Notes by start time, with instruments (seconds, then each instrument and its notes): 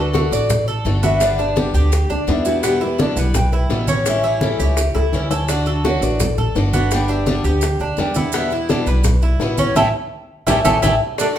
Already playing: upright bass D2, steel-string acoustic guitar D4 F#4, cuban tres A4, nylon-string guitar B4
0.00 steel-string acoustic guitar A3
0.13 steel-string acoustic guitar D3 A3 D4 F#4, cuban tres F#4, nylon-string guitar A4, high bongo, high conga, maracas
0.31 upright bass A1, steel-string acoustic guitar A3 D4 F#4, cuban tres D5, high conga, maracas
0.50 muted steel-string acoustic guitar stroke, high bongo, high conga, low conga, maracas
0.68 cuban tres A4, high bongo, high conga, maracas
0.85 upright bass G1, steel-string acoustic guitar D3 A3 D4 F#4, high bongo, low bongo, high conga, maracas
1.03 steel-string acoustic guitar A3 D4 F#4, cuban tres B3, nylon-string guitar E5, high bongo, high conga, maracas
1.20 steel-string acoustic guitar D3 G3 B3 D4 G4, nylon-string guitar D5, high bongo, high conga, maracas
1.38 steel-string acoustic guitar B3 D4 G4, cuban tres D4, high bongo, high conga, maracas
1.56 steel-string acoustic guitar D3 G3 B3 D4 G4, high bongo, high conga, maracas
1.74 upright bass D2, steel-string acoustic guitar B3 D4 G4, cuban tres G4, high conga, maracas
1.92 muted steel-string acoustic guitar stroke, high bongo, high conga, maracas
2.10 upright bass D2, cuban tres D4, nylon-string guitar D4, high bongo, high conga, maracas
2.27 upright bass E2, steel-string acoustic guitar D3 G3 B3 D4 G4, nylon-string guitar E4, high bongo, low bongo, high conga, maracas
2.45 steel-string acoustic guitar B3 D4 G4, cuban tres E4, nylon-string guitar F#4, high bongo, maracas
2.63 steel-string acoustic guitar B2 D3 G3 B3 E4, cuban tres B3, nylon-string guitar G4, high bongo, high conga, maracas
2.81 steel-string acoustic guitar G3 B3 E4, cuban tres E4, nylon-string guitar B4, high bongo, high conga, maracas
2.98 steel-string acoustic guitar B2 D3 G3 B3 E4, cuban tres D4, nylon-string guitar D5, high bongo, high conga, maracas
3.16 upright bass B1, steel-string acoustic guitar G3 B3 E4, cuban tres B4, nylon-string guitar F#5, high conga, maracas
3.34 nylon-string guitar G5, muted steel-string acoustic guitar stroke, high bongo, high conga, low conga, maracas
3.52 cuban tres E4, nylon-string guitar B4, high bongo, high conga, maracas
3.69 upright bass A1, steel-string acoustic guitar B2 D3 G3 B3 E4, high bongo, low bongo, high conga, maracas
3.88 steel-string acoustic guitar G3 B3 E4, cuban tres C#4, high bongo, high conga, maracas
4.06 steel-string acoustic guitar E3 G3 C#4 E4, nylon-string guitar E5, high bongo, high conga, maracas
4.23 steel-string acoustic guitar G3 C#4 E4, cuban tres E4, nylon-string guitar C#5, high bongo, high conga, maracas
4.41 steel-string acoustic guitar E3 G3 C#4 E4, nylon-string guitar A4, high bongo, high conga, maracas
4.60 upright bass C#2, steel-string acoustic guitar G3 C#4 E4, nylon-string guitar E4, cuban tres G4, high conga, maracas
4.77 nylon-string guitar F#4, muted steel-string acoustic guitar stroke, high bongo, high conga, maracas
4.95 upright bass C#2, cuban tres E4, nylon-string guitar A4, high bongo, high conga, maracas
5.13 upright bass D2, steel-string acoustic guitar E3 G3 C#4 E4, low bongo, high conga, maracas
5.31 steel-string acoustic guitar G3 C#4 E4, cuban tres A4, low bongo, maracas
5.48 steel-string acoustic guitar D3 A3 D4 F#4, cuban tres D4, high bongo, high conga, maracas
5.66 steel-string acoustic guitar A3 D4 F#4, cuban tres A4, high bongo, high conga, maracas
5.84 steel-string acoustic guitar D3 A3 D4 F#4, cuban tres F#4, nylon-string guitar C#5, high bongo, high conga, maracas
6.01 upright bass A1, steel-string acoustic guitar A3 D4 F#4, nylon-string guitar B4, cuban tres D5, high conga, maracas
6.20 nylon-string guitar A4, muted steel-string acoustic guitar stroke, high bongo, high conga, low conga, maracas
6.38 cuban tres A4, high bongo, high conga, low conga, maracas
6.55 upright bass G1, steel-string acoustic guitar D3 A3 D4 F#4, high bongo, low bongo, high conga, maracas
6.73 steel-string acoustic guitar A3 D4 F#4, cuban tres B3, high bongo, high conga, maracas
6.91 steel-string acoustic guitar D3 G3 B3 D4 G4, nylon-string guitar G5, high bongo, high conga, maracas
7.08 cuban tres D4, steel-string acoustic guitar D4 G4, nylon-string guitar E5, high bongo, high conga, maracas
7.12 steel-string acoustic guitar B3
7.26 steel-string acoustic guitar D3 G3 B3 D4 G4, nylon-string guitar D5, high bongo, high conga, maracas
7.44 upright bass D2, steel-string acoustic guitar B3 D4 G4, cuban tres G4, high conga, maracas
7.61 muted steel-string acoustic guitar stroke, high bongo, high conga, maracas
7.79 upright bass D2, cuban tres D4, high bongo, high conga, maracas
7.97 upright bass E2, steel-string acoustic guitar D3 G3 B3 D4 G4, nylon-string guitar G5, high bongo, low bongo, high conga, maracas
8.14 steel-string acoustic guitar B3 D4 G4, cuban tres E4, nylon-string guitar F#5, high bongo, high conga, maracas
8.32 steel-string acoustic guitar B2 D3 G3 B3 E4, cuban tres B3, nylon-string guitar E5, high bongo, high conga, maracas
8.50 steel-string acoustic guitar B3 E4, cuban tres E4, high bongo, high conga, maracas
8.54 steel-string acoustic guitar G3
8.69 steel-string acoustic guitar B2 D3 G3 B3 E4, cuban tres D4, high bongo, high conga, maracas
8.86 upright bass B1, steel-string acoustic guitar G3 B3 E4, cuban tres B4, high conga, maracas
9.04 muted steel-string acoustic guitar stroke, high bongo, high conga, low conga, maracas
9.22 cuban tres E4, high bongo, high conga, maracas
9.40 upright bass A1, steel-string acoustic guitar B2 D3 G3 B3 E4, high bongo, low bongo, high conga, maracas
9.58 steel-string acoustic guitar G3 B3 E4, cuban tres C#4, high bongo, high conga, maracas
9.75 upright bass A1, steel-string acoustic guitar G3 A3 C#4, cuban tres E4 G4 A4, nylon-string guitar E5 G5 A5, low bongo, high conga, maracas
10.47 upright bass A1, steel-string acoustic guitar G3 A3 C#4, cuban tres E4 G4 A4, nylon-string guitar E5 G5 A5, low bongo, high conga, maracas
10.64 upright bass A1, steel-string acoustic guitar G3 A3 C#4, cuban tres E4 G4 A4, nylon-string guitar E5 G5 A5, low bongo, high conga, maracas
10.82 upright bass A1, steel-string acoustic guitar G3 A3 C#4, cuban tres E4 G4 A4, nylon-string guitar E5 G5 A5, low bongo, high conga, maracas
11.18 steel-string acoustic guitar D3 A3 D4 F#4, cuban tres D4, trumpet D4, nylon-string guitar A4, high bongo, high conga, maracas